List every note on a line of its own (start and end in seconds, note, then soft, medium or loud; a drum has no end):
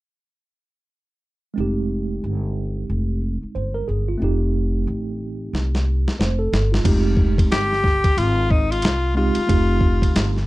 1.54 2.20 F1 medium
1.54 4.15 G#3 medium
1.54 4.17 C4 medium
1.58 4.18 D#4 medium
1.58 3.21 G4 medium
2.24 2.86 G1 medium
2.90 3.40 F1 medium
3.43 muted upright bass stroke soft
3.55 3.87 G1 medium
3.55 3.75 C5 medium
3.74 3.87 A#4 medium
3.88 4.20 G1 medium
3.88 4.07 G#4 medium
4.08 4.40 F4 medium
4.18 6.79 A3 medium
4.18 6.80 C4 medium
4.22 4.84 F1 medium
4.22 6.81 D#4 medium
4.22 6.17 G4 medium
4.87 5.50 A1 medium
5.53 6.04 C2 medium
5.53 snare medium
5.75 snare soft
6.07 muted upright bass stroke soft
6.07 snare medium
6.19 6.51 F1 medium
6.19 6.39 C5 medium
6.19 snare medium
6.39 6.71 A4 medium
6.53 6.84 G1 medium
6.53 snare medium
6.72 7.04 F4 medium
6.72 snare medium
6.84 7.48 F1 loud
6.84 7.71 G#3 medium
6.84 7.72 C4 medium
6.84 7.73 D#4 medium
6.84 7.73 G4 medium
6.84 kick medium
6.84 crash medium
6.84 ride medium
7.17 kick medium
7.38 kick medium
7.38 ride medium
7.52 8.14 G1 medium
7.52 8.20 G4 loud
7.52 snare loud
7.52 hi-hat pedal soft
7.52 ride medium
7.72 snare soft
7.84 kick medium
7.84 snare soft
8.04 kick medium
8.04 ride medium
8.17 8.80 G#1 loud
8.17 8.52 F4 loud
8.17 ride medium
8.51 8.73 D#4 medium
8.51 kick medium
8.71 9.16 F4 medium
8.71 ride soft
8.82 9.34 C2 medium
8.82 snare loud
8.82 hi-hat pedal soft
8.82 ride medium
9.15 9.39 G#3 medium
9.15 9.40 C4 medium
9.15 9.40 D#4 medium
9.15 10.44 F4 medium
9.15 9.40 G4 medium
9.35 ride medium
9.47 10.12 F1 loud
9.47 10.35 A3 medium
9.47 10.35 C4 medium
9.47 10.36 D#4 medium
9.47 10.37 G4 medium
9.47 kick medium
9.47 ride medium
9.81 kick medium
10.02 kick medium
10.02 ride medium
10.15 10.47 G1 medium
10.15 snare loud
10.15 hi-hat pedal soft
10.15 ride medium
10.36 snare soft